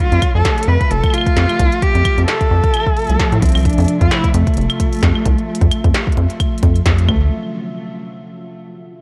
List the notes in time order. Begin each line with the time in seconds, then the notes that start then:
Already playing: A3
0.00 C3 F3 F4 E5
0.12 F2, closed hi-hat
0.22 kick, closed hi-hat, claves
0.35 F2 A4
0.45 kick, snare, closed hi-hat
0.58 closed hi-hat
0.63 closed hi-hat
0.68 F2 B4
0.80 kick, closed hi-hat
0.91 F1 A4, closed hi-hat
1.03 kick, closed hi-hat, claves
1.06 claves
1.10 F4, closed hi-hat, claves
1.13 claves
1.18 claves
1.21 claves
1.26 kick, closed hi-hat
1.36 F2, snare, closed hi-hat
1.49 closed hi-hat, claves
1.59 C2, kick, closed hi-hat
1.72 closed hi-hat
1.82 G4, kick, closed hi-hat
1.95 F2, closed hi-hat
2.05 kick, closed hi-hat, claves
2.18 F2, closed hi-hat
2.28 A4, snare, closed hi-hat
2.41 kick, closed hi-hat
2.51 F2
2.64 kick, closed hi-hat
2.74 closed hi-hat, claves
2.77 claves
2.80 claves
2.83 kick, claves
2.97 closed hi-hat
2.99 closed hi-hat
3.02 closed hi-hat
3.04 closed hi-hat
3.07 C2, closed hi-hat
3.10 closed hi-hat
3.20 kick, snare, closed hi-hat
3.32 A2, closed hi-hat
3.42 C2 C4, kick, closed hi-hat
3.46 closed hi-hat
3.49 closed hi-hat
3.52 C2, closed hi-hat
3.55 closed hi-hat, claves
3.57 closed hi-hat
3.59 closed hi-hat
3.61 closed hi-hat
3.63 D4, kick, closed hi-hat
3.65 closed hi-hat
3.70 closed hi-hat
3.73 closed hi-hat
3.78 F2, closed hi-hat
3.80 closed hi-hat
3.82 closed hi-hat
3.84 closed hi-hat
3.86 closed hi-hat
3.88 closed hi-hat
4.01 F2 F4, kick, closed hi-hat
4.11 E4, snare, closed hi-hat
4.24 kick, closed hi-hat
4.34 F2 A3, closed hi-hat
4.47 kick, closed hi-hat
4.54 closed hi-hat
4.57 F1, closed hi-hat
4.61 closed hi-hat
4.70 closed hi-hat, claves
4.80 kick, closed hi-hat
4.93 closed hi-hat
4.95 closed hi-hat
4.97 closed hi-hat
4.99 closed hi-hat
5.01 F2, kick, snare, closed hi-hat
5.03 closed hi-hat
5.16 claves
5.26 C2, kick, closed hi-hat
5.38 closed hi-hat
5.55 closed hi-hat
5.61 F2, kick, closed hi-hat
5.71 closed hi-hat, claves
5.84 F2, kick, closed hi-hat
5.94 snare, closed hi-hat
6.07 kick
6.12 closed hi-hat
6.17 F2, closed hi-hat
6.30 closed hi-hat
6.40 kick, closed hi-hat, claves
6.58 closed hi-hat
6.63 F2, kick, closed hi-hat
6.76 closed hi-hat
6.86 F2, kick, snare, closed hi-hat
6.99 closed hi-hat
7.09 D2 A3, kick, claves